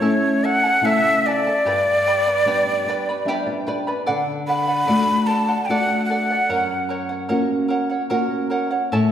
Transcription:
Already playing: C#5
0.01 A3 C#4 E4 A4 C#5 E5 A5
0.44 E4 A4 E5 F#5 A5
0.64 E4 A4 A5
0.81 C#3 A3 E4 E5
0.85 E4 A4 C#5 E5 A5
1.26 E4 A4 D5 E5 A5
1.47 E4 A4 A5
1.65 G2 G4 B4 D5 G5 B5
2.06 B4 D5 G5 B5
2.27 B4 D5 B5
2.45 G3 B3 D4 G4 B4 D5 G5 B5
2.85 B4 D5 G5
2.90 B5
3.09 B4 D5 B5
3.25 G3 B3 D4 G4 B4 D5 E5 G5 B5
3.47 D5
3.67 B4 D5 G5 B5
3.87 B4 D5 B5
4.06 D3 A4 D5 F#5
4.47 A4 D5 F#5 B5
4.68 D5 F#5
4.87 A3 D4 F#4 A4 D5 F#5
5.27 A4 D5 F#5 A5
5.48 D5 F#5
5.65 A3 G5
5.69 D4 F#4 A4 D5 F#5
6.05 F#5
6.10 A4 D5 F#5
6.30 D5 F#5
6.49 F#2 A#4 C#5 F#5
6.89 A#4 C#5 F#5
7.09 C#5 F#5
7.29 A#3 C#4 F#4 A#4 C#5 F#5
7.68 A#4 C#5 F#5
7.90 C#5 F#5
8.10 A#3 C#4 F#4 A#4 C#5 F#5
8.50 A#4 C#5 F#5
8.71 C#5 F#5
8.92 A2 E4 A4 C#5 E5 A5

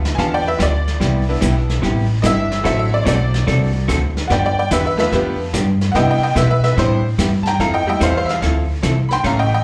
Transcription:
Already playing: D2 A3 B3 F4
0.05 snare
0.15 E2 D3 F3 B3 D4 G4 F5 G#5, brush sweep, kick, snare
0.20 A5
0.34 D5 G5
0.47 B4 E5
0.58 D2 D3 F3 B3 D4 G4, kick, snare, hi-hat pedal
0.63 D5
0.88 snare
1.00 C2 C3 G3 B3 E4 G4, brush sweep, kick, snare
1.29 B3 D4 E4
1.41 B1 C3 G3 B3 E4 G4, kick, snare, hi-hat pedal
1.69 snare
1.82 A1 C3 G3 B3 E4 G4, brush sweep, kick, snare
2.22 G1 C3 G3 B3 D4 E4 G4 D#5, kick, snare, hi-hat pedal
2.26 E5
2.52 snare
2.64 A1 D3 F#3 A3 C4 E4 F#4 A4 E5, brush sweep, kick, snare
2.79 E5
2.94 D5
3.03 B1 D3 A3 C4 F#4 A4 C#5, kick, snare, hi-hat pedal
3.08 D5
3.34 snare
3.47 C2 D3 A3 C4 F#4 A4, brush sweep, kick, snare
3.88 D2 D3 A3 C4 F#4 A4, kick, snare, hi-hat pedal
4.17 snare
4.28 G2 D3 F3 B3 D4 G4 F#5, brush sweep, kick, snare
4.32 D5 G5
4.46 D5 G5
4.59 D5 G5
4.71 E2 D3 F3 B3 D4 G4 B4 E5, kick, snare, hi-hat pedal
4.86 B4 E5
4.97 A3 B3 F4 B4 E5, snare
5.12 F2 D3 F3 B3 D4 G4 B4, brush sweep, kick, snare
5.53 G2 D3 F3 B3 D4 G4, kick, snare, hi-hat pedal
5.81 snare
5.92 C3 B3 D4 E4 D#5 F#5, brush sweep, kick, snare
5.96 G3 B3 E4 G4 G5
6.11 D#5 G5
6.23 D#5 G5
6.35 B2 C3 G3 B3 E4 G4 B4 E5, kick, snare, hi-hat pedal
6.50 B4 E5
6.64 B4 E5, snare
6.77 A2 C3 G3 B3 D4 E4 G4 C5, brush sweep, kick, snare
7.18 G2 C3 G3 B3 E4 G4, kick, snare, hi-hat pedal
7.43 A5, snare
7.47 G5 A#5
7.59 F2 F3 C4 E4 A4 F5 A#5, brush sweep, kick, snare
7.74 D#5 G5
7.87 G3 A3 E4 D#5 G5
8.00 E2 F3 C4 E4 A4 C5 F5, kick, snare, hi-hat pedal
8.17 C5 F5
8.26 E5, snare
8.31 F5
8.42 D2 F3 C4 E4 A4, brush sweep, kick, snare
8.83 C2 F3 C4 E4 A4, kick, snare, hi-hat pedal
9.09 G5 B5, snare
9.13 C6
9.24 A1 C#3 E3 A3 C#4 A4 F5 A#5, brush sweep, kick, snare
9.39 D#5 G5
9.54 D#5 G5

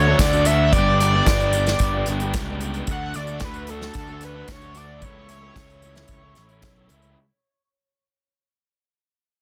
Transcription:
Already playing: D2 D3 A4 C#5 D5 F#5
0.07 A3 D4 F#4
0.19 D2 D3 A3 D4 F#4 D5, kick, snare, closed hi-hat, tambourine
0.33 A3 D4 F#4, closed hi-hat
0.45 D3 A3 D4 F#4 E5, closed hi-hat, tambourine
0.72 G1 G2 D3 G3 B3 D4 G4 B4 D5 G5, kick, closed hi-hat
1.00 G3 B3 D4 G4 D5, closed hi-hat, tambourine
1.14 G3 B3 D4 G4
1.26 G1 G2 D3 G3 B3 D4 G4, kick, snare, closed hi-hat, tambourine
1.40 closed hi-hat
1.53 G3 B3 D4, closed hi-hat, tambourine
1.57 G4
1.66 G3 B3 D4 G4, snare, closed hi-hat
1.79 G1, kick, closed hi-hat, tambourine
1.94 G3 B3 D4 G4
2.06 G1 G3 B3 D4, closed hi-hat, tambourine
2.10 G4
2.20 G3 B3 D4 G4, closed hi-hat
2.34 C#2 G2 D3 G3 B3 D4 G4, kick, snare, closed hi-hat, tambourine
2.48 G3 B3 D4 G4
2.61 G3 B3 D4, closed hi-hat
2.65 G4
2.74 closed hi-hat
2.86 D2 D3 A4 D5 F#5, kick, closed hi-hat
2.90 A3 D4 F#4 F#5
3.14 D2 D3 A3 D4 D5, closed hi-hat, tambourine
3.19 F#4
3.27 D4 F#4, closed hi-hat
3.32 A3
3.40 D2 D3 A3 D4, kick, snare, closed hi-hat, tambourine
3.44 F#4 B4
3.54 closed hi-hat
3.67 D3 A3 D4 A4, closed hi-hat, tambourine
3.72 F#4
3.82 D4 F#4, snare
3.86 A3
3.94 D2, kick, closed hi-hat, tambourine
3.98 A4
4.07 A3 D4 F#4, closed hi-hat
4.21 D3 A3 D4 F#4 B4, closed hi-hat, tambourine
4.34 A3 D4 F#4
4.48 D2 D3 A3 D4 F#4, kick, snare, closed hi-hat, tambourine
4.52 C#5
4.59 A3 D4 F#4, closed hi-hat
4.73 D3 A3 D4 F#4, closed hi-hat
4.77 D5, tambourine
5.00 C#2 C#3 E3 A3 C#4 E4 C#5 E5, kick, closed hi-hat, tambourine
5.27 E3 A3 C#4 E4 C#5, closed hi-hat
5.31 tambourine
5.41 A3 C#4 E4
5.53 C#2 C#3 E3 A3 C#4 E4, kick, snare, closed hi-hat, tambourine
5.70 closed hi-hat
5.81 E3 A3 C#4 E4, closed hi-hat
5.94 A3 C#4 E4, snare, closed hi-hat
6.08 C#2, kick, closed hi-hat, tambourine
6.22 A3 C#4 E4
6.35 A1 E3 A3 C#4 E4, snare, closed hi-hat, tambourine
6.49 A3 C#4 E4, closed hi-hat
6.61 B1 C#3 E3 A3 C#4 E4, kick, snare, closed hi-hat, tambourine
6.76 A3 C#4 E4
6.88 C#2 E3 A3 C#4 E4, closed hi-hat, tambourine
7.02 closed hi-hat

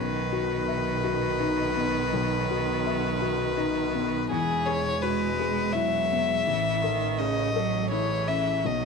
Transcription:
Already playing: B1 D#3 B4
0.32 F#4
0.68 E5
1.04 F#4
1.40 D#4
1.76 B3
2.13 B1
2.51 F#4
2.86 E5
3.22 F#4
3.57 D#4
3.94 B3
4.30 E1 E2 E3 G#4
4.66 G#4 C#5
5.02 G#3 F#4 B4
5.39 G#4
5.72 F#3 E4 E5
6.11 B3
6.46 A1 E3
6.82 D#3 A4
7.17 C#3 G#4 D#5
7.54 F#3 A4
7.91 E3 E4 C#5
8.28 C#4 E5
8.65 B1 F#3 D#5

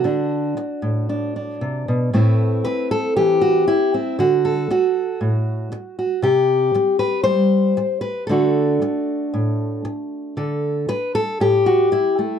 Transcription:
Already playing: F#4
0.04 D3 D4
0.57 muted steel-string acoustic guitar stroke
0.82 A2
1.09 D4
1.36 D4
1.61 C3
1.88 B2
2.13 A2 A3 C4 E4 B4
2.64 B4, muted steel-string acoustic guitar stroke
2.91 A4
3.16 E3 G4
3.41 F#4
3.68 E4, muted steel-string acoustic guitar stroke
3.94 C4
4.19 D3 F#4
4.45 A4
4.70 F#4, muted steel-string acoustic guitar stroke
5.21 A2
5.72 muted steel-string acoustic guitar stroke
5.99 F#4
6.22 C3 G4
6.75 muted steel-string acoustic guitar stroke
6.99 B4
7.24 G3 C5
7.77 muted steel-string acoustic guitar stroke
8.01 B4
8.27 D3 A3 D4 A4
8.31 F#4
8.82 muted steel-string acoustic guitar stroke
9.34 A2
9.85 muted steel-string acoustic guitar stroke
10.37 D3 A4
10.88 B4, muted steel-string acoustic guitar stroke
11.15 A4
11.40 A2 G4
11.66 F#4
11.92 E4, muted steel-string acoustic guitar stroke
12.19 A3

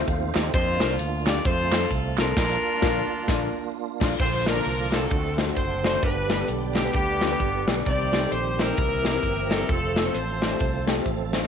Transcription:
Already playing: A3 C4 D#4 F4 C5
0.08 D#2 A4 F5, kick, closed hi-hat
0.35 D#2 G4 D#5, snare, clap, closed hi-hat
0.54 F2 A#3 D4 F4 C5, kick, closed hi-hat
0.80 C2 D4 F4 A#4, snare, clap, closed hi-hat
0.99 D2, closed hi-hat
1.26 D4 F4 G4 D5, snare, clap, closed hi-hat
1.45 F2 G#3 C4 F4 A4 C5, kick, closed hi-hat
1.52 A3
1.71 C4 F4 A4, snare, clap, closed hi-hat
1.91 C2, kick, closed hi-hat
2.17 C4 D4 F4 A4 A#4, snare, clap, closed hi-hat
2.36 A#1 A#3 D4 F4, kick, snare, crash
2.81 A#1 D4 F4 A#4, kick, snare
3.27 A#1 D4 F4, kick, snare
4.00 A#1 D4 F4, kick, snare, crash
4.19 A#1 A#2 D3 F3 A#3 F4 C5 D5 F5 A#5 D6, kick, crash
4.46 A#3 D4 F4 A#4 D5, snare, closed hi-hat
4.55 A#3 D4 F4 A#4
4.65 C2, closed hi-hat
4.92 A#3 C4 D4 F4 F#4 A4 C5, snare, closed hi-hat
5.01 A#3 D4 F4 A4
5.11 D2 D3 A3 C4 F#4 D5 F#5 A5 C6, kick, closed hi-hat
5.37 A3 D4 F#4 C5, snare, closed hi-hat
5.46 A3 D4 F#4 A4
5.57 F#1 C5, kick, closed hi-hat
5.83 A3 D4 F#4 C5 D5, snare, closed hi-hat
5.93 A3 D4 F#4 C5
6.02 G1 G2 D3 G3 B3 D4 G4 B4 G5 B5, kick, closed hi-hat
6.29 G3 B3 D4 B4, snare, closed hi-hat
6.39 G3 B3 D4 A4
6.48 B1, closed hi-hat
6.75 G3 B3 D4 G4 D5, snare, closed hi-hat
6.84 G3 B3 D4 B4
6.93 D2 B3 D4 G4, kick, closed hi-hat
7.21 G3 B3 D4 F4, snare, closed hi-hat
7.30 G3 B3 D4 B4
7.40 G1, kick, closed hi-hat
7.67 B1 G3 B3 D4 G4, snare, closed hi-hat
7.76 G3 B3 D4 D5
7.86 C2 C3 D#3 G3 C4 D#4 G4 C5 D5 C6, kick, closed hi-hat
8.12 G3 C4 D#4 C5, snare, closed hi-hat
8.22 G3 C4 D#4 A4
8.32 A#1 C5, closed hi-hat
8.59 G3 C4 D#4 E4 G4 A#4, snare, closed hi-hat
8.68 G3 C4 D#4 G4
8.77 C2 C3 E3 A#3 C4 A#4 C5 E5 A#5, kick, closed hi-hat
9.04 G3 C4 E4 A#4, snare, closed hi-hat
9.13 G3 C4 E4 A#4
9.23 G1, kick, closed hi-hat
9.50 G3 C4 E4 A4, snare, closed hi-hat
9.59 G3 C4 E4 A#4
9.69 F1 F3 A3 C4 F4 G#4 A4 C5 F5 A5, kick, closed hi-hat
9.75 A4
9.96 A3 C4 F4 C5, snare, closed hi-hat
10.05 A3 C4 F4 C5
10.14 A1 F4 A4 C5, closed hi-hat
10.41 A3 C4 F4 D5, snare, closed hi-hat
10.50 A3 C4 F4 G4
10.60 C2, kick, closed hi-hat
10.87 A3 C4 F4 G4, snare, closed hi-hat
10.96 A3 C4 F4 G4
11.06 A1, kick, closed hi-hat
11.33 A3 C4 F4 C5, snare, closed hi-hat
11.42 A3 C4 F4 D#5

